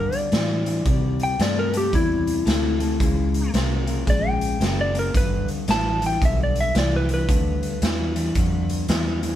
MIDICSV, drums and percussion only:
0, 0, Header, 1, 2, 480
1, 0, Start_track
1, 0, Tempo, 535714
1, 770, Time_signature, 4, 2, 24, 8
1, 8383, End_track
2, 0, Start_track
2, 0, Title_t, "Drums"
2, 112, Note_on_c, 9, 42, 55
2, 201, Note_off_c, 9, 42, 0
2, 286, Note_on_c, 9, 42, 76
2, 297, Note_on_c, 9, 38, 104
2, 376, Note_off_c, 9, 42, 0
2, 386, Note_off_c, 9, 38, 0
2, 594, Note_on_c, 9, 42, 57
2, 683, Note_off_c, 9, 42, 0
2, 767, Note_on_c, 9, 36, 121
2, 767, Note_on_c, 9, 42, 79
2, 856, Note_off_c, 9, 42, 0
2, 857, Note_off_c, 9, 36, 0
2, 1072, Note_on_c, 9, 42, 57
2, 1161, Note_off_c, 9, 42, 0
2, 1250, Note_on_c, 9, 42, 80
2, 1261, Note_on_c, 9, 38, 107
2, 1340, Note_off_c, 9, 42, 0
2, 1351, Note_off_c, 9, 38, 0
2, 1554, Note_on_c, 9, 42, 67
2, 1644, Note_off_c, 9, 42, 0
2, 1731, Note_on_c, 9, 36, 105
2, 1733, Note_on_c, 9, 42, 79
2, 1820, Note_off_c, 9, 36, 0
2, 1822, Note_off_c, 9, 42, 0
2, 2037, Note_on_c, 9, 42, 55
2, 2127, Note_off_c, 9, 42, 0
2, 2212, Note_on_c, 9, 42, 82
2, 2222, Note_on_c, 9, 38, 101
2, 2301, Note_off_c, 9, 42, 0
2, 2312, Note_off_c, 9, 38, 0
2, 2512, Note_on_c, 9, 42, 59
2, 2602, Note_off_c, 9, 42, 0
2, 2689, Note_on_c, 9, 42, 92
2, 2690, Note_on_c, 9, 36, 109
2, 2779, Note_off_c, 9, 42, 0
2, 2780, Note_off_c, 9, 36, 0
2, 2996, Note_on_c, 9, 42, 55
2, 3085, Note_off_c, 9, 42, 0
2, 3171, Note_on_c, 9, 42, 81
2, 3182, Note_on_c, 9, 38, 108
2, 3260, Note_off_c, 9, 42, 0
2, 3271, Note_off_c, 9, 38, 0
2, 3471, Note_on_c, 9, 42, 63
2, 3561, Note_off_c, 9, 42, 0
2, 3649, Note_on_c, 9, 36, 104
2, 3649, Note_on_c, 9, 42, 80
2, 3739, Note_off_c, 9, 36, 0
2, 3739, Note_off_c, 9, 42, 0
2, 3954, Note_on_c, 9, 42, 54
2, 4044, Note_off_c, 9, 42, 0
2, 4131, Note_on_c, 9, 42, 77
2, 4141, Note_on_c, 9, 38, 102
2, 4220, Note_off_c, 9, 42, 0
2, 4231, Note_off_c, 9, 38, 0
2, 4434, Note_on_c, 9, 42, 64
2, 4524, Note_off_c, 9, 42, 0
2, 4610, Note_on_c, 9, 36, 118
2, 4610, Note_on_c, 9, 42, 82
2, 4699, Note_off_c, 9, 36, 0
2, 4700, Note_off_c, 9, 42, 0
2, 4913, Note_on_c, 9, 42, 50
2, 5003, Note_off_c, 9, 42, 0
2, 5087, Note_on_c, 9, 42, 77
2, 5098, Note_on_c, 9, 38, 108
2, 5177, Note_off_c, 9, 42, 0
2, 5187, Note_off_c, 9, 38, 0
2, 5394, Note_on_c, 9, 42, 61
2, 5483, Note_off_c, 9, 42, 0
2, 5570, Note_on_c, 9, 36, 113
2, 5572, Note_on_c, 9, 42, 83
2, 5660, Note_off_c, 9, 36, 0
2, 5661, Note_off_c, 9, 42, 0
2, 5873, Note_on_c, 9, 42, 58
2, 5963, Note_off_c, 9, 42, 0
2, 6047, Note_on_c, 9, 42, 82
2, 6058, Note_on_c, 9, 38, 108
2, 6137, Note_off_c, 9, 42, 0
2, 6148, Note_off_c, 9, 38, 0
2, 6351, Note_on_c, 9, 42, 57
2, 6441, Note_off_c, 9, 42, 0
2, 6529, Note_on_c, 9, 36, 127
2, 6530, Note_on_c, 9, 42, 91
2, 6619, Note_off_c, 9, 36, 0
2, 6619, Note_off_c, 9, 42, 0
2, 6834, Note_on_c, 9, 42, 55
2, 6924, Note_off_c, 9, 42, 0
2, 7006, Note_on_c, 9, 42, 96
2, 7017, Note_on_c, 9, 38, 121
2, 7096, Note_off_c, 9, 42, 0
2, 7107, Note_off_c, 9, 38, 0
2, 7310, Note_on_c, 9, 42, 71
2, 7400, Note_off_c, 9, 42, 0
2, 7483, Note_on_c, 9, 42, 81
2, 7486, Note_on_c, 9, 36, 110
2, 7573, Note_off_c, 9, 42, 0
2, 7576, Note_off_c, 9, 36, 0
2, 7791, Note_on_c, 9, 42, 59
2, 7881, Note_off_c, 9, 42, 0
2, 7961, Note_on_c, 9, 42, 89
2, 7972, Note_on_c, 9, 38, 109
2, 8051, Note_off_c, 9, 42, 0
2, 8061, Note_off_c, 9, 38, 0
2, 8269, Note_on_c, 9, 42, 61
2, 8359, Note_off_c, 9, 42, 0
2, 8383, End_track
0, 0, End_of_file